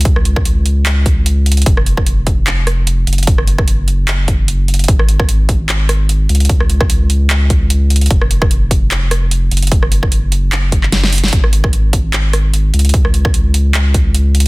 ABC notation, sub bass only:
X:1
M:4/4
L:1/8
Q:"Swing 16ths" 1/4=149
K:Db
V:1 name="Sub bass" clef=bass
D,,8 | F,,,6- F,,, G,,,- | G,,,8 | A,,,6- A,,, D,,- |
D,,8 | F,,,6- F,,, G,,,- | G,,,8 | A,,,6- A,,, D,,- |
D,,8 |]